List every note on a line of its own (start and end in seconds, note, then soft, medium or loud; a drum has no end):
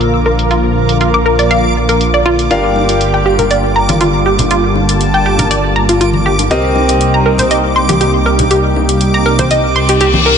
0.00 2.48 A#1 medium
0.00 2.47 D3 medium
0.00 2.47 F3 medium
0.00 6.47 A#3 medium
0.00 2.48 D4 medium
0.00 2.48 F4 medium
0.00 6.47 F4 medium
0.00 2.47 A#4 medium
0.00 2.48 A#4 medium
0.00 2.48 F5 medium
0.00 10.38 D6 medium
0.00 closed hi-hat soft
0.26 0.29 A#4 medium
0.39 closed hi-hat medium
0.51 0.58 F4 medium
0.51 closed hi-hat soft
0.89 closed hi-hat medium
1.01 1.04 F4 medium
1.01 closed hi-hat soft
1.14 1.21 D6 medium
1.26 1.29 A#4 medium
1.39 1.44 D5 medium
1.39 closed hi-hat medium
1.51 1.58 F5 medium
1.51 closed hi-hat soft
1.89 1.94 A#4 medium
1.89 closed hi-hat medium
2.01 closed hi-hat soft
2.14 2.18 D5 medium
2.26 2.29 F4 medium
2.39 closed hi-hat medium
2.51 6.48 G1 medium
2.51 6.47 D3 medium
2.51 6.47 G3 medium
2.51 6.48 D4 medium
2.51 2.58 F4 medium
2.51 6.48 G4 medium
2.51 4.49 G4 medium
2.51 6.48 A#4 medium
2.51 6.48 F5 medium
2.51 closed hi-hat soft
2.76 high bongo medium
2.89 closed hi-hat medium
3.01 closed hi-hat soft
3.14 3.21 G5 medium
3.26 3.29 G4 medium
3.39 3.43 A#4 medium
3.39 closed hi-hat medium
3.39 low conga medium
3.51 3.58 D5 medium
3.51 closed hi-hat soft
3.76 3.81 A#5 medium
3.89 3.94 F4 medium
3.89 closed hi-hat medium
3.89 high conga medium
4.01 4.04 F4 medium
4.01 closed hi-hat soft
4.26 4.29 G4 medium
4.39 closed hi-hat medium
4.39 low conga medium
4.51 4.58 F4 medium
4.51 6.49 A5 medium
4.51 closed hi-hat soft
4.76 high bongo medium
4.89 closed hi-hat medium
5.01 closed hi-hat soft
5.14 5.21 G5 medium
5.26 5.29 G4 medium
5.39 5.44 A#4 medium
5.39 closed hi-hat medium
5.39 high conga medium
5.39 low conga medium
5.51 5.58 D5 medium
5.51 closed hi-hat soft
5.76 5.81 A#5 medium
5.89 5.94 F4 medium
5.89 closed hi-hat medium
6.01 6.04 F4 medium
6.01 closed hi-hat soft
6.13 high conga medium
6.26 6.29 G4 medium
6.39 closed hi-hat medium
6.39 high bongo medium
6.51 10.38 C2 medium
6.51 10.38 C3 medium
6.51 10.38 G3 medium
6.51 10.38 A#3 medium
6.51 10.38 C4 medium
6.51 10.38 D#4 medium
6.51 10.38 G4 medium
6.51 6.58 G4 medium
6.51 10.38 G4 medium
6.51 10.38 A#4 medium
6.51 10.38 D#5 medium
6.51 closed hi-hat medium
6.76 high bongo medium
6.89 closed hi-hat medium
7.01 closed hi-hat medium
7.14 7.21 A#5 medium
7.26 7.29 A#4 medium
7.38 7.44 C5 medium
7.38 closed hi-hat medium
7.38 low conga medium
7.51 7.58 D#5 medium
7.51 closed hi-hat medium
7.76 7.81 C6 medium
7.89 7.94 G4 medium
7.89 closed hi-hat medium
7.89 high conga medium
8.01 8.04 G4 medium
8.01 closed hi-hat soft
8.26 8.29 A#4 medium
8.39 closed hi-hat medium
8.39 low conga medium
8.51 8.58 G4 medium
8.51 closed hi-hat medium
8.76 high bongo medium
8.89 closed hi-hat medium
9.01 closed hi-hat soft
9.14 9.21 A#5 medium
9.26 9.29 A#4 medium
9.38 9.44 C5 medium
9.38 closed hi-hat medium
9.38 high conga medium
9.38 low conga medium
9.51 9.58 D#5 medium
9.51 closed hi-hat medium
9.51 reverse cymbal medium
9.76 9.81 C6 medium
9.89 9.94 G4 medium
9.89 closed hi-hat medium
10.01 10.04 G4 medium
10.01 closed hi-hat medium
10.14 high conga medium
10.26 10.29 A#4 medium